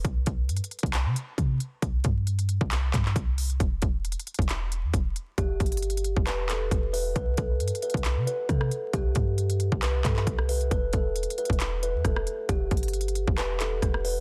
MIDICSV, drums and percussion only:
0, 0, Header, 1, 2, 480
1, 0, Start_track
1, 0, Key_signature, 1, "minor"
1, 0, Tempo, 444444
1, 51, Time_signature, 4, 2, 24, 8
1, 15338, End_track
2, 0, Start_track
2, 0, Title_t, "Drums"
2, 50, Note_on_c, 9, 36, 115
2, 51, Note_on_c, 9, 42, 78
2, 158, Note_off_c, 9, 36, 0
2, 159, Note_off_c, 9, 42, 0
2, 283, Note_on_c, 9, 42, 78
2, 290, Note_on_c, 9, 36, 94
2, 391, Note_off_c, 9, 42, 0
2, 398, Note_off_c, 9, 36, 0
2, 530, Note_on_c, 9, 42, 79
2, 611, Note_off_c, 9, 42, 0
2, 611, Note_on_c, 9, 42, 69
2, 690, Note_off_c, 9, 42, 0
2, 690, Note_on_c, 9, 42, 66
2, 769, Note_off_c, 9, 42, 0
2, 769, Note_on_c, 9, 42, 53
2, 850, Note_off_c, 9, 42, 0
2, 850, Note_on_c, 9, 42, 49
2, 898, Note_on_c, 9, 36, 86
2, 929, Note_off_c, 9, 42, 0
2, 929, Note_on_c, 9, 42, 44
2, 1006, Note_off_c, 9, 36, 0
2, 1009, Note_off_c, 9, 42, 0
2, 1009, Note_on_c, 9, 39, 116
2, 1009, Note_on_c, 9, 42, 66
2, 1117, Note_off_c, 9, 39, 0
2, 1117, Note_off_c, 9, 42, 0
2, 1253, Note_on_c, 9, 42, 80
2, 1361, Note_off_c, 9, 42, 0
2, 1490, Note_on_c, 9, 36, 94
2, 1494, Note_on_c, 9, 42, 76
2, 1598, Note_off_c, 9, 36, 0
2, 1602, Note_off_c, 9, 42, 0
2, 1731, Note_on_c, 9, 42, 63
2, 1839, Note_off_c, 9, 42, 0
2, 1970, Note_on_c, 9, 36, 115
2, 1970, Note_on_c, 9, 42, 80
2, 2078, Note_off_c, 9, 36, 0
2, 2078, Note_off_c, 9, 42, 0
2, 2204, Note_on_c, 9, 42, 80
2, 2210, Note_on_c, 9, 36, 97
2, 2312, Note_off_c, 9, 42, 0
2, 2318, Note_off_c, 9, 36, 0
2, 2451, Note_on_c, 9, 42, 65
2, 2559, Note_off_c, 9, 42, 0
2, 2578, Note_on_c, 9, 42, 64
2, 2686, Note_off_c, 9, 42, 0
2, 2687, Note_on_c, 9, 42, 70
2, 2795, Note_off_c, 9, 42, 0
2, 2818, Note_on_c, 9, 36, 87
2, 2926, Note_off_c, 9, 36, 0
2, 2930, Note_on_c, 9, 42, 68
2, 2931, Note_on_c, 9, 39, 118
2, 3038, Note_off_c, 9, 42, 0
2, 3039, Note_off_c, 9, 39, 0
2, 3171, Note_on_c, 9, 36, 94
2, 3171, Note_on_c, 9, 39, 96
2, 3174, Note_on_c, 9, 42, 83
2, 3279, Note_off_c, 9, 36, 0
2, 3279, Note_off_c, 9, 39, 0
2, 3282, Note_off_c, 9, 42, 0
2, 3298, Note_on_c, 9, 39, 66
2, 3406, Note_off_c, 9, 39, 0
2, 3410, Note_on_c, 9, 36, 97
2, 3414, Note_on_c, 9, 42, 77
2, 3518, Note_off_c, 9, 36, 0
2, 3522, Note_off_c, 9, 42, 0
2, 3651, Note_on_c, 9, 42, 68
2, 3651, Note_on_c, 9, 46, 72
2, 3759, Note_off_c, 9, 42, 0
2, 3759, Note_off_c, 9, 46, 0
2, 3777, Note_on_c, 9, 42, 39
2, 3885, Note_off_c, 9, 42, 0
2, 3890, Note_on_c, 9, 36, 112
2, 3890, Note_on_c, 9, 42, 79
2, 3998, Note_off_c, 9, 36, 0
2, 3998, Note_off_c, 9, 42, 0
2, 4123, Note_on_c, 9, 42, 80
2, 4130, Note_on_c, 9, 36, 99
2, 4231, Note_off_c, 9, 42, 0
2, 4238, Note_off_c, 9, 36, 0
2, 4371, Note_on_c, 9, 42, 77
2, 4450, Note_off_c, 9, 42, 0
2, 4450, Note_on_c, 9, 42, 69
2, 4531, Note_off_c, 9, 42, 0
2, 4531, Note_on_c, 9, 42, 66
2, 4610, Note_off_c, 9, 42, 0
2, 4610, Note_on_c, 9, 42, 53
2, 4691, Note_off_c, 9, 42, 0
2, 4691, Note_on_c, 9, 42, 51
2, 4738, Note_on_c, 9, 36, 87
2, 4771, Note_off_c, 9, 42, 0
2, 4771, Note_on_c, 9, 42, 45
2, 4846, Note_off_c, 9, 36, 0
2, 4850, Note_off_c, 9, 42, 0
2, 4850, Note_on_c, 9, 39, 115
2, 4850, Note_on_c, 9, 42, 68
2, 4958, Note_off_c, 9, 39, 0
2, 4958, Note_off_c, 9, 42, 0
2, 5095, Note_on_c, 9, 42, 80
2, 5203, Note_off_c, 9, 42, 0
2, 5330, Note_on_c, 9, 36, 93
2, 5334, Note_on_c, 9, 42, 75
2, 5438, Note_off_c, 9, 36, 0
2, 5442, Note_off_c, 9, 42, 0
2, 5572, Note_on_c, 9, 42, 65
2, 5680, Note_off_c, 9, 42, 0
2, 5810, Note_on_c, 9, 36, 110
2, 5811, Note_on_c, 9, 42, 77
2, 5918, Note_off_c, 9, 36, 0
2, 5919, Note_off_c, 9, 42, 0
2, 6050, Note_on_c, 9, 36, 95
2, 6051, Note_on_c, 9, 42, 49
2, 6114, Note_off_c, 9, 42, 0
2, 6114, Note_on_c, 9, 42, 60
2, 6158, Note_off_c, 9, 36, 0
2, 6177, Note_off_c, 9, 42, 0
2, 6177, Note_on_c, 9, 42, 70
2, 6234, Note_off_c, 9, 42, 0
2, 6234, Note_on_c, 9, 42, 78
2, 6291, Note_off_c, 9, 42, 0
2, 6291, Note_on_c, 9, 42, 63
2, 6371, Note_off_c, 9, 42, 0
2, 6371, Note_on_c, 9, 42, 64
2, 6451, Note_off_c, 9, 42, 0
2, 6451, Note_on_c, 9, 42, 65
2, 6528, Note_off_c, 9, 42, 0
2, 6528, Note_on_c, 9, 42, 72
2, 6636, Note_off_c, 9, 42, 0
2, 6658, Note_on_c, 9, 36, 86
2, 6766, Note_off_c, 9, 36, 0
2, 6771, Note_on_c, 9, 39, 120
2, 6771, Note_on_c, 9, 42, 65
2, 6879, Note_off_c, 9, 39, 0
2, 6879, Note_off_c, 9, 42, 0
2, 7011, Note_on_c, 9, 39, 97
2, 7014, Note_on_c, 9, 42, 82
2, 7119, Note_off_c, 9, 39, 0
2, 7122, Note_off_c, 9, 42, 0
2, 7250, Note_on_c, 9, 36, 97
2, 7254, Note_on_c, 9, 42, 76
2, 7358, Note_off_c, 9, 36, 0
2, 7362, Note_off_c, 9, 42, 0
2, 7492, Note_on_c, 9, 46, 69
2, 7600, Note_off_c, 9, 46, 0
2, 7730, Note_on_c, 9, 36, 109
2, 7731, Note_on_c, 9, 42, 79
2, 7838, Note_off_c, 9, 36, 0
2, 7839, Note_off_c, 9, 42, 0
2, 7964, Note_on_c, 9, 42, 80
2, 7970, Note_on_c, 9, 36, 100
2, 8072, Note_off_c, 9, 42, 0
2, 8078, Note_off_c, 9, 36, 0
2, 8210, Note_on_c, 9, 42, 76
2, 8290, Note_off_c, 9, 42, 0
2, 8290, Note_on_c, 9, 42, 72
2, 8370, Note_off_c, 9, 42, 0
2, 8370, Note_on_c, 9, 42, 67
2, 8449, Note_off_c, 9, 42, 0
2, 8449, Note_on_c, 9, 42, 57
2, 8529, Note_off_c, 9, 42, 0
2, 8529, Note_on_c, 9, 42, 49
2, 8577, Note_on_c, 9, 36, 90
2, 8609, Note_off_c, 9, 42, 0
2, 8609, Note_on_c, 9, 42, 44
2, 8685, Note_off_c, 9, 36, 0
2, 8689, Note_off_c, 9, 42, 0
2, 8689, Note_on_c, 9, 39, 114
2, 8689, Note_on_c, 9, 42, 68
2, 8797, Note_off_c, 9, 39, 0
2, 8797, Note_off_c, 9, 42, 0
2, 8934, Note_on_c, 9, 42, 82
2, 9042, Note_off_c, 9, 42, 0
2, 9169, Note_on_c, 9, 36, 99
2, 9170, Note_on_c, 9, 37, 66
2, 9173, Note_on_c, 9, 42, 75
2, 9277, Note_off_c, 9, 36, 0
2, 9278, Note_off_c, 9, 37, 0
2, 9281, Note_off_c, 9, 42, 0
2, 9297, Note_on_c, 9, 37, 96
2, 9405, Note_off_c, 9, 37, 0
2, 9411, Note_on_c, 9, 42, 62
2, 9519, Note_off_c, 9, 42, 0
2, 9650, Note_on_c, 9, 36, 114
2, 9651, Note_on_c, 9, 42, 81
2, 9758, Note_off_c, 9, 36, 0
2, 9759, Note_off_c, 9, 42, 0
2, 9883, Note_on_c, 9, 42, 79
2, 9889, Note_on_c, 9, 36, 99
2, 9991, Note_off_c, 9, 42, 0
2, 9997, Note_off_c, 9, 36, 0
2, 10131, Note_on_c, 9, 42, 62
2, 10239, Note_off_c, 9, 42, 0
2, 10256, Note_on_c, 9, 42, 65
2, 10364, Note_off_c, 9, 42, 0
2, 10366, Note_on_c, 9, 42, 69
2, 10474, Note_off_c, 9, 42, 0
2, 10497, Note_on_c, 9, 36, 88
2, 10605, Note_off_c, 9, 36, 0
2, 10610, Note_on_c, 9, 39, 116
2, 10610, Note_on_c, 9, 42, 68
2, 10718, Note_off_c, 9, 39, 0
2, 10718, Note_off_c, 9, 42, 0
2, 10849, Note_on_c, 9, 39, 95
2, 10850, Note_on_c, 9, 36, 94
2, 10853, Note_on_c, 9, 42, 81
2, 10957, Note_off_c, 9, 39, 0
2, 10958, Note_off_c, 9, 36, 0
2, 10961, Note_off_c, 9, 42, 0
2, 10976, Note_on_c, 9, 39, 66
2, 11084, Note_off_c, 9, 39, 0
2, 11089, Note_on_c, 9, 36, 95
2, 11093, Note_on_c, 9, 42, 76
2, 11197, Note_off_c, 9, 36, 0
2, 11201, Note_off_c, 9, 42, 0
2, 11216, Note_on_c, 9, 37, 93
2, 11324, Note_off_c, 9, 37, 0
2, 11329, Note_on_c, 9, 42, 65
2, 11330, Note_on_c, 9, 46, 71
2, 11437, Note_off_c, 9, 42, 0
2, 11438, Note_off_c, 9, 46, 0
2, 11457, Note_on_c, 9, 42, 37
2, 11565, Note_off_c, 9, 42, 0
2, 11569, Note_on_c, 9, 36, 107
2, 11570, Note_on_c, 9, 42, 79
2, 11677, Note_off_c, 9, 36, 0
2, 11678, Note_off_c, 9, 42, 0
2, 11802, Note_on_c, 9, 42, 77
2, 11809, Note_on_c, 9, 36, 99
2, 11910, Note_off_c, 9, 42, 0
2, 11917, Note_off_c, 9, 36, 0
2, 12049, Note_on_c, 9, 42, 79
2, 12129, Note_off_c, 9, 42, 0
2, 12129, Note_on_c, 9, 42, 71
2, 12208, Note_off_c, 9, 42, 0
2, 12208, Note_on_c, 9, 42, 65
2, 12289, Note_off_c, 9, 42, 0
2, 12289, Note_on_c, 9, 42, 55
2, 12369, Note_off_c, 9, 42, 0
2, 12369, Note_on_c, 9, 42, 49
2, 12417, Note_on_c, 9, 36, 85
2, 12449, Note_off_c, 9, 42, 0
2, 12449, Note_on_c, 9, 42, 43
2, 12525, Note_off_c, 9, 36, 0
2, 12529, Note_off_c, 9, 42, 0
2, 12529, Note_on_c, 9, 39, 116
2, 12529, Note_on_c, 9, 42, 70
2, 12637, Note_off_c, 9, 39, 0
2, 12637, Note_off_c, 9, 42, 0
2, 12774, Note_on_c, 9, 42, 82
2, 12882, Note_off_c, 9, 42, 0
2, 13009, Note_on_c, 9, 36, 96
2, 13009, Note_on_c, 9, 37, 63
2, 13013, Note_on_c, 9, 42, 77
2, 13117, Note_off_c, 9, 36, 0
2, 13117, Note_off_c, 9, 37, 0
2, 13121, Note_off_c, 9, 42, 0
2, 13137, Note_on_c, 9, 37, 95
2, 13245, Note_off_c, 9, 37, 0
2, 13249, Note_on_c, 9, 42, 64
2, 13357, Note_off_c, 9, 42, 0
2, 13489, Note_on_c, 9, 36, 109
2, 13489, Note_on_c, 9, 42, 78
2, 13597, Note_off_c, 9, 36, 0
2, 13597, Note_off_c, 9, 42, 0
2, 13729, Note_on_c, 9, 36, 95
2, 13729, Note_on_c, 9, 42, 51
2, 13793, Note_off_c, 9, 42, 0
2, 13793, Note_on_c, 9, 42, 61
2, 13837, Note_off_c, 9, 36, 0
2, 13857, Note_off_c, 9, 42, 0
2, 13857, Note_on_c, 9, 42, 72
2, 13913, Note_off_c, 9, 42, 0
2, 13913, Note_on_c, 9, 42, 81
2, 13970, Note_off_c, 9, 42, 0
2, 13970, Note_on_c, 9, 42, 65
2, 14049, Note_off_c, 9, 42, 0
2, 14049, Note_on_c, 9, 42, 64
2, 14130, Note_off_c, 9, 42, 0
2, 14130, Note_on_c, 9, 42, 64
2, 14206, Note_off_c, 9, 42, 0
2, 14206, Note_on_c, 9, 42, 68
2, 14314, Note_off_c, 9, 42, 0
2, 14337, Note_on_c, 9, 36, 88
2, 14445, Note_off_c, 9, 36, 0
2, 14449, Note_on_c, 9, 39, 118
2, 14449, Note_on_c, 9, 42, 68
2, 14557, Note_off_c, 9, 39, 0
2, 14557, Note_off_c, 9, 42, 0
2, 14689, Note_on_c, 9, 39, 100
2, 14692, Note_on_c, 9, 42, 80
2, 14797, Note_off_c, 9, 39, 0
2, 14800, Note_off_c, 9, 42, 0
2, 14928, Note_on_c, 9, 37, 67
2, 14929, Note_on_c, 9, 36, 98
2, 14932, Note_on_c, 9, 42, 76
2, 15036, Note_off_c, 9, 37, 0
2, 15037, Note_off_c, 9, 36, 0
2, 15040, Note_off_c, 9, 42, 0
2, 15057, Note_on_c, 9, 37, 94
2, 15165, Note_off_c, 9, 37, 0
2, 15171, Note_on_c, 9, 46, 70
2, 15279, Note_off_c, 9, 46, 0
2, 15338, End_track
0, 0, End_of_file